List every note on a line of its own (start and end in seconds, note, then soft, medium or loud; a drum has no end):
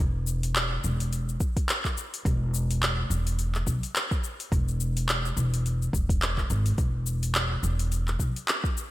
0.00 0.77 E1 loud
0.27 shaker medium
0.43 open hi-hat medium
0.43 shaker soft
0.56 clap loud
0.56 open hi-hat soft
0.56 shaker soft
0.84 1.34 E1 medium
0.84 shaker medium
1.00 open hi-hat medium
1.00 shaker soft
1.13 open hi-hat soft
1.13 shaker soft
1.29 shaker soft
1.40 kick loud
1.40 shaker medium
1.57 kick loud
1.57 open hi-hat medium
1.57 shaker soft
1.69 clap loud
1.69 open hi-hat soft
1.69 shaker soft
1.85 kick medium
1.85 clap soft
1.85 shaker soft
1.97 shaker medium
2.14 open hi-hat medium
2.14 shaker soft
2.25 3.04 E1 loud
2.25 kick loud
2.25 open hi-hat soft
2.25 shaker soft
2.54 shaker medium
2.71 open hi-hat medium
2.71 shaker soft
2.83 clap loud
2.83 open hi-hat soft
2.83 shaker soft
3.10 3.60 E1 medium
3.10 shaker medium
3.27 open hi-hat medium
3.27 shaker soft
3.39 open hi-hat soft
3.39 shaker soft
3.55 clap soft
3.55 shaker soft
3.67 3.76 B1 medium
3.67 kick medium
3.67 shaker medium
3.83 open hi-hat medium
3.83 shaker soft
3.96 clap loud
3.96 open hi-hat soft
3.96 shaker soft
4.11 kick loud
4.11 shaker soft
4.24 shaker medium
4.40 open hi-hat medium
4.40 shaker soft
4.52 5.30 E1 loud
4.52 kick loud
4.52 open hi-hat soft
4.52 shaker soft
4.68 shaker soft
4.80 shaker medium
4.97 open hi-hat medium
4.97 shaker soft
5.09 clap loud
5.09 open hi-hat soft
5.09 shaker soft
5.25 shaker soft
5.36 5.87 E1 medium
5.36 shaker medium
5.54 open hi-hat medium
5.54 shaker soft
5.66 open hi-hat soft
5.66 shaker soft
5.82 shaker soft
5.93 6.43 E1 medium
5.93 kick loud
5.93 shaker medium
6.09 kick loud
6.09 open hi-hat soft
6.09 shaker soft
6.22 clap medium
6.22 open hi-hat soft
6.22 shaker soft
6.38 kick medium
6.38 clap soft
6.38 shaker soft
6.50 6.70 G#1 loud
6.50 shaker medium
6.66 open hi-hat soft
6.66 shaker soft
6.78 7.57 E1 medium
6.78 kick loud
6.78 open hi-hat soft
6.78 shaker soft
7.06 shaker medium
7.23 open hi-hat medium
7.23 shaker soft
7.35 clap loud
7.35 open hi-hat soft
7.35 shaker soft
7.63 8.13 E1 medium
7.63 shaker medium
7.79 open hi-hat medium
7.79 shaker soft
7.92 open hi-hat soft
7.92 shaker soft
8.08 clap soft
8.08 shaker soft
8.20 8.29 B1 medium
8.20 kick medium
8.20 shaker medium
8.36 open hi-hat medium
8.36 shaker soft
8.48 clap medium
8.48 open hi-hat soft
8.48 shaker soft
8.64 kick loud
8.64 shaker soft
8.77 shaker medium